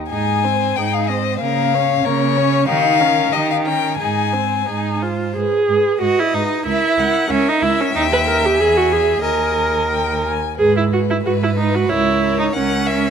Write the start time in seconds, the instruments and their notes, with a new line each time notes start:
0.10 cello G#2, viola D#4, violin G#4 G#5
0.44 viola C4, violin C5
0.76 cello G#2, viola D#4, violin G#4 G5
0.93 violin F5
1.08 viola C4, violin C5 D#5
1.40 cello C#3, viola A#3, violin A#4 F5
1.74 viola C#4, violin C#5
2.05 cello C#3, viola A#3, violin A#4 C#5
2.37 viola C#4, violin C#5
2.68 cello D#3, viola D#4, violin G4 F5
3.00 viola C#4, violin A#4
3.32 cello D#3, viola D#4, violin G4 D#5
3.50 violin F5
3.65 viola C#4, violin A#4 G5
3.98 cello G#2, viola D#4, violin G#4 G#5
4.33 viola C4, violin C5
4.66 cello G#2, viola D#4, violin G#4
5.02 viola F4, violin C5
5.36 cello G#2, viola G#4, violin B4
5.69 cello G#2, violin B4
6.00 cello G#2, viola F#4, violin B4 D#5
6.19 viola E4
6.33 cello G#2, viola D#4, violin B4
6.65 cello C#2, viola E4, violin A#4 E5
6.97 cello C#2, violin A#4 F#5
7.29 cello C#2, viola C#4, violin A#4 E5
7.48 viola D#4
7.61 cello C#2, viola E4, violin A#4
7.80 viola C#4
7.94 cello D#2, viola D#4, violin G5
8.13 viola B4
8.28 viola A#4
8.45 viola G4
8.58 cello E2, viola G#4, violin G#5
8.77 viola F#4
8.92 viola G#4
9.23 cello D#2, viola A#4, violin D#5 G#5
9.90 violin G5
10.24 violin G#5
10.57 cello G#2, viola G#4, violin B4
10.77 viola E4
10.92 viola F#4, violin B4
11.10 viola E4
11.25 cello G#2, viola F#4, violin B4
11.43 viola E4
11.58 viola D#4, violin B4
11.75 viola F#4
11.89 cello C#2, viola E4, violin A#4 C#5
12.22 violin A#4
12.39 viola D#4
12.53 cello C#2, viola C#4, violin A#4 F#5
12.87 violin A#4 E5